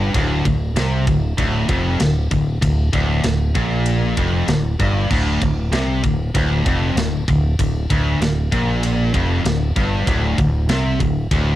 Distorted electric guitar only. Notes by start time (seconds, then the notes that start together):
Already playing: G2
0.14 D2
0.46 D2
0.76 C3
1.07 D2
1.38 D2
1.69 F2
2.00 D2
2.31 D2
2.62 D2
2.93 D2
3.24 D2
3.55 A#2
4.18 F2
4.49 D2
4.80 G2
5.11 D2
5.43 D2
5.73 C3
6.04 D2
6.35 D2
6.66 F2
6.97 D2
7.29 D2
7.60 D2
7.90 D2
8.21 D2
8.52 A#2
9.14 F2
9.44 D2
9.76 G2
10.07 D2
10.39 D2
10.70 C3
11.01 D2
11.31 D2